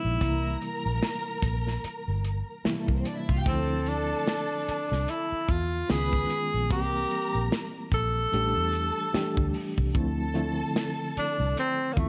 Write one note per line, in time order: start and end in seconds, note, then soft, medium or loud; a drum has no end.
0.00 0.23 C#3 medium
0.00 0.23 F3 medium
0.00 0.22 G#3 medium
0.00 0.23 B3 medium
0.00 0.23 D#4 medium
0.00 0.62 E4 medium
0.05 0.18 A#1 medium
0.21 0.55 C2 medium
0.21 1.57 C3 medium
0.21 1.57 E3 medium
0.21 1.58 G3 medium
0.21 1.58 A#3 medium
0.21 1.58 E4 medium
0.21 2.63 A#4 medium
0.21 2.63 A#5 loud
0.21 kick loud
0.21 closed hi-hat loud
0.62 closed hi-hat medium
0.86 0.99 A#1 medium
1.03 snare medium
1.03 closed hi-hat medium
1.42 1.76 A#1 medium
1.42 kick medium
1.42 closed hi-hat medium
1.67 snare soft
1.84 muted fingered electric bass stroke soft
1.84 closed hi-hat medium
2.08 2.41 G1 medium
2.24 closed hi-hat medium
2.64 3.34 C3 medium
2.64 3.34 E3 medium
2.64 3.34 G3 medium
2.64 3.35 A#3 medium
2.64 3.35 E4 medium
2.64 muted fingered electric bass stroke soft
2.64 snare loud
2.64 closed hi-hat medium
2.77 2.89 A3 medium
2.77 2.89 A4 medium
2.88 3.02 C2 medium
2.88 2.97 A#3 medium
2.88 2.97 A#4 medium
2.88 kick medium
2.97 3.06 C4 medium
2.97 3.05 C5 medium
3.05 3.17 D4 medium
3.05 3.17 D5 medium
3.05 closed hi-hat medium
3.17 3.29 E4 medium
3.17 3.29 E5 medium
3.29 3.43 C2 medium
3.29 3.38 F4 medium
3.29 3.38 F5 medium
3.29 kick medium
3.38 3.46 G4 medium
3.38 3.46 G5 medium
3.45 4.13 D2 loud
3.45 4.82 D3 medium
3.45 4.82 F3 medium
3.45 4.82 A3 medium
3.45 4.83 C4 medium
3.45 3.91 C4 medium
3.45 4.83 E4 medium
3.45 5.45 A4 medium
3.45 5.45 A5 loud
3.45 kick loud
3.45 closed hi-hat medium
3.86 5.12 D4 medium
3.86 closed hi-hat medium
4.28 snare loud
4.28 closed hi-hat medium
4.68 muted fingered electric bass stroke soft
4.68 closed hi-hat medium
4.92 5.05 C2 medium
4.92 snare soft
5.08 5.53 E4 medium
5.08 closed hi-hat medium
5.32 muted fingered electric bass stroke soft
5.49 5.82 E2 medium
5.49 5.93 F4 medium
5.49 kick medium
5.49 closed hi-hat medium
5.89 6.23 C#2 medium
5.89 6.59 D#3 medium
5.89 6.59 G#3 medium
5.89 6.59 B3 medium
5.89 6.59 C#4 medium
5.89 6.60 F4 medium
5.89 6.71 G#4 loud
5.89 6.29 B4 medium
5.89 6.29 B5 medium
5.89 snare loud
5.89 closed hi-hat medium
6.13 kick medium
6.30 closed hi-hat medium
6.54 6.71 A#1 medium
6.70 7.04 C2 medium
6.70 8.06 E3 medium
6.70 8.06 G3 medium
6.70 8.07 A#3 medium
6.70 8.07 C4 medium
6.70 8.07 G4 medium
6.70 7.49 G4 medium
6.70 7.90 A#4 medium
6.70 7.90 A#5 loud
6.70 kick loud
6.70 closed hi-hat loud
7.11 closed hi-hat medium
7.35 7.49 A#1 medium
7.52 snare loud
7.52 closed hi-hat medium
7.92 8.25 A#1 medium
7.92 9.51 A4 loud
7.92 kick medium
7.92 closed hi-hat medium
8.32 8.52 A1 medium
8.32 9.02 E3 medium
8.32 9.02 G3 medium
8.32 9.02 A3 medium
8.32 9.02 D4 medium
8.32 9.03 G4 medium
8.32 9.52 A4 medium
8.32 9.52 A5 medium
8.32 closed hi-hat medium
8.57 8.90 E2 medium
8.73 closed hi-hat medium
9.13 9.83 E3 medium
9.13 9.83 G3 medium
9.13 9.83 A3 medium
9.13 9.83 D4 medium
9.13 9.83 G4 medium
9.13 muted fingered electric bass stroke soft
9.13 snare medium
9.13 closed hi-hat medium
9.37 9.51 D2 medium
9.37 kick medium
9.54 open hi-hat medium
9.78 9.92 C2 medium
9.78 kick medium
9.94 10.62 D2 medium
9.94 10.29 D3 medium
9.94 10.29 F3 medium
9.94 10.29 A3 medium
9.94 10.30 C4 medium
9.94 10.30 E4 medium
9.94 11.94 A4 medium
9.94 11.94 A5 loud
9.94 kick loud
9.94 closed hi-hat medium
10.34 11.70 D3 medium
10.34 11.71 F3 medium
10.34 11.71 A3 medium
10.34 11.71 C4 medium
10.34 11.71 E4 medium
10.34 closed hi-hat medium
10.76 snare medium
10.76 closed hi-hat medium
11.17 11.55 D4 loud
11.17 muted fingered electric bass stroke soft
11.17 closed hi-hat medium
11.40 11.54 C2 medium
11.57 11.94 C4 medium
11.57 closed hi-hat medium
11.93 12.09 D3 medium
11.93 12.01 A#3 medium
11.93 12.09 F4 medium
11.97 12.09 E2 medium
11.97 12.09 A3 medium
11.97 12.09 C4 medium
11.97 12.09 E4 medium
11.97 kick medium
11.97 closed hi-hat medium